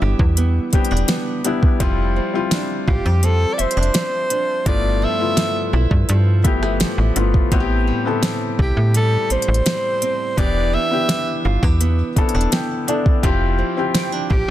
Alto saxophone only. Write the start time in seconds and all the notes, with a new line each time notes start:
2.89 G4
3.25 A4
3.53 D5
3.61 C5
4.68 D5
5.04 E5
8.61 G4
8.96 A4
9.32 C5
10.38 D5
10.74 E5
14.31 G4